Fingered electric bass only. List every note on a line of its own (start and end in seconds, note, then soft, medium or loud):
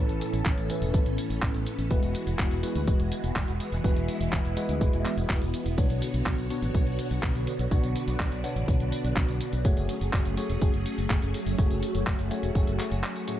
0.09 0.20 A1 medium
0.33 0.44 A1 medium
0.46 0.56 A1 loud
0.58 0.68 A1 medium
0.82 0.92 E1 medium
0.94 1.05 A1 loud
1.06 1.17 A1 medium
1.30 1.41 A1 medium
1.42 1.53 A1 loud
1.54 1.65 A1 medium
1.79 1.89 A1 medium
1.91 2.01 E1 loud
2.03 2.13 E1 medium
2.27 2.38 E1 medium
2.39 2.50 E1 loud
2.51 2.62 E1 medium
2.75 2.86 D2 medium
2.88 2.98 E1 loud
3.00 3.10 E1 medium
3.24 3.34 E1 medium
3.36 3.47 E1 loud
3.48 3.59 E1 medium
3.72 3.83 E1 medium
3.84 3.95 E1 loud
3.96 4.07 E1 medium
4.21 4.31 E1 medium
4.33 4.43 E1 loud
4.45 4.55 E1 medium
4.69 4.80 D2 medium
4.81 4.92 E1 medium
4.93 5.04 E1 medium
5.17 5.28 E1 medium
5.30 5.40 E1 loud
5.42 5.52 E1 medium
5.66 5.76 E1 medium
5.78 5.88 B1 loud
5.90 6.00 B1 medium
6.14 6.25 B1 medium
6.26 6.37 B1 loud
6.38 6.49 B1 medium
6.62 6.73 A1 medium
6.75 6.85 B1 loud
6.87 6.97 B1 medium
7.11 7.21 B1 medium
7.23 7.34 B1 loud
7.35 7.46 B1 medium
7.59 7.70 B1 medium
7.71 7.82 B1 loud
7.84 7.94 B1 medium
8.08 8.18 B1 medium
8.20 8.30 B1 loud
8.32 8.42 B1 medium
8.56 8.67 A1 medium
8.68 8.79 B1 loud
8.80 8.91 B1 medium
9.04 9.15 B1 medium
9.17 9.27 B1 loud
9.29 9.39 B1 medium
9.53 9.64 B1 medium
9.65 9.76 F#1 loud
9.77 9.88 F#1 medium
10.01 10.12 F#1 medium
10.13 10.24 F#1 loud
10.26 10.36 F#1 medium
10.50 10.60 E1 medium
10.62 10.72 F#1 loud
10.74 10.84 F#1 medium
10.98 11.09 F#1 medium
11.10 11.21 F#1 loud
11.22 11.33 F#1 medium
11.46 11.57 F#1 medium
11.59 11.69 F#1 loud
11.71 11.81 F#1 medium
11.95 12.05 F#1 medium
12.07 12.17 F#1 loud
12.19 12.30 F#1 medium
12.43 12.54 E1 medium
12.55 12.66 F#1 loud
12.67 12.78 F#1 medium
12.92 13.02 F#1 medium